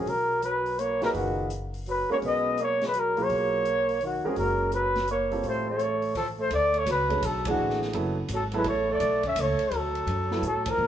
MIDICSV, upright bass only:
0, 0, Header, 1, 3, 480
1, 0, Start_track
1, 0, Tempo, 356930
1, 104, Time_signature, 3, 2, 24, 8
1, 14619, End_track
2, 0, Start_track
2, 0, Title_t, "Upright bass"
2, 0, Program_c, 0, 32
2, 83, Note_on_c, 0, 35, 67
2, 1485, Note_off_c, 0, 35, 0
2, 1535, Note_on_c, 0, 30, 64
2, 2768, Note_off_c, 0, 30, 0
2, 2987, Note_on_c, 0, 35, 59
2, 4381, Note_off_c, 0, 35, 0
2, 4430, Note_on_c, 0, 35, 64
2, 5659, Note_off_c, 0, 35, 0
2, 5874, Note_on_c, 0, 30, 69
2, 7266, Note_off_c, 0, 30, 0
2, 7309, Note_on_c, 0, 33, 69
2, 8702, Note_off_c, 0, 33, 0
2, 8752, Note_on_c, 0, 38, 67
2, 9217, Note_off_c, 0, 38, 0
2, 9225, Note_on_c, 0, 37, 77
2, 9699, Note_off_c, 0, 37, 0
2, 9712, Note_on_c, 0, 35, 83
2, 10181, Note_off_c, 0, 35, 0
2, 10192, Note_on_c, 0, 33, 71
2, 10661, Note_off_c, 0, 33, 0
2, 10682, Note_on_c, 0, 30, 80
2, 11140, Note_off_c, 0, 30, 0
2, 11148, Note_on_c, 0, 32, 81
2, 11613, Note_off_c, 0, 32, 0
2, 11621, Note_on_c, 0, 33, 74
2, 12092, Note_off_c, 0, 33, 0
2, 12105, Note_on_c, 0, 35, 79
2, 12573, Note_off_c, 0, 35, 0
2, 12582, Note_on_c, 0, 37, 74
2, 12879, Note_off_c, 0, 37, 0
2, 13058, Note_on_c, 0, 38, 69
2, 13528, Note_off_c, 0, 38, 0
2, 13539, Note_on_c, 0, 42, 83
2, 14007, Note_off_c, 0, 42, 0
2, 14021, Note_on_c, 0, 45, 73
2, 14487, Note_off_c, 0, 45, 0
2, 14502, Note_on_c, 0, 46, 72
2, 14619, Note_off_c, 0, 46, 0
2, 14619, End_track
3, 0, Start_track
3, 0, Title_t, "Muted upright bass strokes"
3, 2821, Note_on_c, 9, 29, 28
3, 2955, Note_off_c, 9, 29, 0
3, 5707, Note_on_c, 9, 29, 33
3, 5841, Note_off_c, 9, 29, 0
3, 12912, Note_on_c, 9, 29, 36
3, 13046, Note_off_c, 9, 29, 0
3, 14619, End_track
0, 0, End_of_file